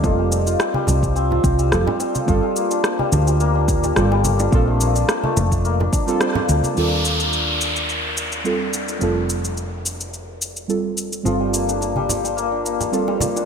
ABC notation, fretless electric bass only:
X:1
M:4/4
L:1/8
Q:"Swing 16ths" 1/4=107
K:Gm
V:1 name="Fretless electric bass" clef=bass
F,,,2 z C,,2 C,, F,,, z | G,,, z2 D,,3 G,,,2 | B,,,2 z F,,,2 z2 D,, | E,,8 |
F,,,8 | G,,,8 |]